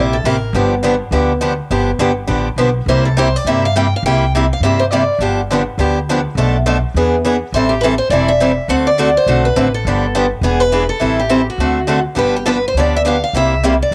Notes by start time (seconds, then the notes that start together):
Already playing: A#1 C3 G3 A#3 E4 G4
0.13 A4
0.24 A1 C3 G3 A#3 E4 G4 A#4
0.53 G1 D3 F3 B3 D4 G4
0.83 D3 F3 B3 D4 G4
1.11 D2 D3 F3 B3 D4 G4
1.41 D3 F3 B3 D4 G4
1.70 G1 D3 F3 B3 D4 G4
1.99 G1 D3 F3 B3 D4 G4
2.27 A1 D3 F3 B3 D4 G4
2.56 B1 D3 F3 B3 D4 G4
2.86 C2 C3 G3 A#3 E4 G4 C5
3.05 A4
3.17 C3 G3 A#3 E4 G4 C5
3.36 D5
3.45 G2 C3 G3 A#3 E4 E5
3.49 G4
3.65 F5
3.76 C3 G3 A#3 E4 G4 G5
3.96 F5
4.03 C2 C3 G3 A#3 G5
4.07 E4 G4
4.35 C3 G3 A#3 E4 G4
4.53 F5
4.60 G2 C3 G3 E5
4.65 A#3 E4 G4
4.79 C5
4.91 C3 G3 A#3 E4 G4 D5
5.19 G1 D3 F3 B3 D4 G4
5.51 D3 F3 B3 D4 G4
5.78 D2 D3 F3 B3 D4 G4
6.09 D3 F3 B3 D4 G4
6.35 B1 B2 F3 A3 D4 A4
6.66 B2 F3 A3 D4 A4
6.94 E2 E3 B3 D4 G#4
7.25 E3 B3 D4 G#4
7.52 A1 E3 G3 C4 E4 C5
7.57 A4
7.69 G4
7.81 E3 G3 C4 E4 B4
7.85 A4
7.98 C5
8.09 E1 E3 G3 C4 E4 A4 D5
8.28 E5
8.40 E3 G3 C4 E4 A4
8.68 D2 D3 A3 C4 F#4 A4 F#5
8.87 D5
8.98 D3 A3 C4 F#4 A4
9.17 C5
9.26 B1 D3 A3 C4 F#4 A4
9.45 B4
9.56 A1 D3 A3 C4 F#4 A4
9.74 A4
9.85 G1 D3 F3 B3 D4 G4
10.15 D3 F3 B3 D4 G4
10.41 E1 E3 B3 D4 G#4
10.60 B4
10.72 E3 B3 D4 G#4
10.89 A4
11.00 A1 E3 G3 C4 E4 A4
11.20 G4
11.30 E3 G3 C4 E4 A4
11.50 F#4
11.58 D2 D3 A3 C4 F#4 A4
11.87 D3 A3 C4 F#4 A4
12.15 G1 D3 F3 B3 D4 G4 B4
12.36 G4
12.46 D3 F3 B3 D4 G4 A4 B4
12.68 C5
12.74 D2 D3 F3 B3 D4 C#5
12.79 G4 D5
12.96 E5
13.05 D3 F3 B3 D4 G4 F5
13.24 F5
13.33 C2 C3 G3 A#3 E4 G4 E5
13.64 C3 G3 A#3 E4 G4
13.83 D5
13.91 A#1